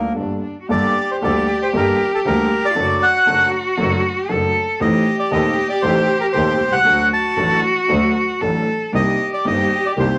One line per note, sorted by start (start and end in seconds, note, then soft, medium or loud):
0.00 0.12 D2 medium
0.00 0.12 D3 medium
0.00 0.11 G3 medium
0.00 0.11 A#3 medium
0.00 0.13 A#3 medium
0.00 0.12 D4 medium
0.00 0.13 A4 medium
0.14 0.38 G1 medium
0.14 0.39 G1 medium
0.14 0.38 G2 medium
0.14 0.38 G3 medium
0.14 0.38 A#3 medium
0.14 0.38 D4 medium
0.14 0.41 D4 medium
0.14 0.38 A4 medium
0.43 0.60 D4 medium
0.61 0.69 F#4 medium
0.68 0.91 G1 medium
0.68 0.92 G1 medium
0.68 0.91 G2 medium
0.68 0.91 G3 medium
0.68 0.91 A#3 medium
0.68 0.91 D4 medium
0.68 2.72 G4 loud
0.68 0.92 A4 medium
0.68 1.11 D5 loud
1.12 1.17 C5 medium
1.21 1.44 D2 medium
1.21 1.44 D3 medium
1.21 1.43 G3 medium
1.21 1.44 A#3 medium
1.21 1.44 D4 medium
1.21 1.44 A4 medium
1.21 1.59 D5 medium
1.63 1.68 C5 medium
1.73 1.95 G1 medium
1.73 1.96 G1 loud
1.73 1.95 G2 medium
1.73 1.95 G3 medium
1.73 1.95 A#3 medium
1.73 1.95 D4 medium
1.73 1.96 A4 medium
1.77 2.11 A#4 medium
2.15 2.20 A4 medium
2.25 2.47 D2 medium
2.25 2.47 D3 medium
2.25 2.47 G3 medium
2.25 2.47 A#3 medium
2.25 2.47 D4 medium
2.25 2.47 A4 medium
2.25 2.66 A#4 loud
2.65 3.04 D5 loud
2.70 2.78 F4 medium
2.75 2.98 F#1 medium
2.75 2.98 F#2 medium
2.75 2.98 F#3 medium
2.75 2.98 A3 medium
2.75 2.98 D4 medium
2.75 4.32 F#4 loud
2.75 2.98 A4 medium
3.03 3.50 F#5 loud
3.26 3.50 F#1 medium
3.26 3.49 F#2 medium
3.26 3.49 F#3 medium
3.26 3.49 A3 medium
3.26 3.49 D4 medium
3.26 3.49 A4 medium
3.77 4.00 F#1 loud
3.77 4.00 F#2 loud
3.77 4.00 F#3 medium
3.77 4.00 A3 medium
3.77 3.99 D4 medium
3.77 4.00 A4 medium
4.29 4.51 F#1 medium
4.29 4.51 F#2 medium
4.29 4.51 F#3 medium
4.29 4.50 A3 medium
4.29 4.51 D4 medium
4.29 4.51 A4 medium
4.29 4.81 A4 loud
4.80 5.02 A1 medium
4.80 5.02 A1 loud
4.80 5.02 A2 medium
4.80 5.02 D#3 medium
4.80 5.02 A3 medium
4.80 5.01 C4 medium
4.80 6.84 G4 loud
4.80 5.02 A4 medium
4.80 5.17 D#5 medium
5.19 5.31 D5 medium
5.31 5.53 D#1 medium
5.31 5.53 D#2 loud
5.31 5.53 D#3 medium
5.31 5.53 A3 medium
5.31 5.53 C4 medium
5.31 5.53 A4 medium
5.31 5.67 D#5 medium
5.69 5.83 D5 medium
5.82 6.04 A1 loud
5.82 6.05 A1 medium
5.82 6.05 A2 medium
5.82 6.04 D#3 medium
5.82 6.05 A3 medium
5.82 6.05 C4 medium
5.82 6.05 A4 medium
5.82 6.18 C5 loud
6.21 6.27 A#4 medium
6.33 6.56 D#1 medium
6.33 6.56 D#2 medium
6.33 6.56 D#2 loud
6.33 6.55 D#3 medium
6.33 6.56 A3 medium
6.33 6.55 C4 medium
6.33 6.56 A4 medium
6.33 6.73 C5 loud
6.61 6.86 C2 medium
6.67 6.73 B1 medium
6.72 6.79 C2 medium
6.72 7.09 F#5 loud
6.79 6.86 C#2 medium
6.84 7.07 D2 medium
6.84 7.08 D2 loud
6.84 7.07 D3 medium
6.84 7.07 F#3 medium
6.84 7.07 A3 medium
6.84 7.07 D4 medium
6.84 8.42 F#4 loud
6.84 7.08 A4 medium
7.13 7.61 A5 loud
7.36 7.59 A1 medium
7.36 7.60 A1 medium
7.36 7.59 A2 medium
7.36 7.59 F#3 medium
7.36 7.59 A3 medium
7.36 7.59 D4 medium
7.36 7.59 A4 medium
7.88 8.11 D2 medium
7.88 8.12 D2 loud
7.88 8.11 D3 medium
7.88 8.11 F#3 medium
7.88 8.11 A3 medium
7.88 8.11 D4 medium
7.88 8.11 A4 medium
8.41 8.64 A1 medium
8.41 8.64 A2 medium
8.41 8.64 F#3 medium
8.41 8.64 A3 medium
8.41 8.64 D4 medium
8.41 8.94 A4 loud
8.41 8.64 A4 medium
8.92 9.15 C2 medium
8.92 9.16 C2 medium
8.92 9.15 C3 medium
8.92 9.15 D#3 medium
8.92 9.15 A#3 medium
8.92 9.15 C4 medium
8.92 10.18 G4 loud
8.92 9.15 G4 medium
8.92 9.31 D#5 loud
9.34 9.46 D5 medium
9.45 9.67 G1 medium
9.45 9.68 G1 medium
9.45 9.67 G2 medium
9.45 9.68 D#3 medium
9.45 9.67 A#3 medium
9.45 9.68 C4 medium
9.45 9.68 G4 medium
9.45 9.87 D#5 loud
9.86 9.92 D5 medium
9.97 10.18 C2 loud
9.97 10.18 C2 medium
9.97 10.18 C3 medium
9.97 10.18 D#3 medium
9.97 10.18 A#3 medium
9.97 10.18 C4 medium
9.97 10.18 G4 medium
9.97 10.18 C5 medium